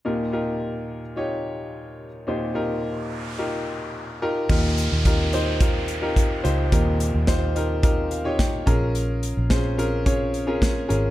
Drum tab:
CC |--------|--------|x-------|--------|
HH |--------|--------|-xxxxxxx|xxxxxxxx|
SD |--------|--------|--------|--o---o-|
BD |--------|--------|o-o-o-o-|o-o-o-oo|

CC |--------|
HH |xxxxxxxx|
SD |--o---o-|
BD |--o-o-o-|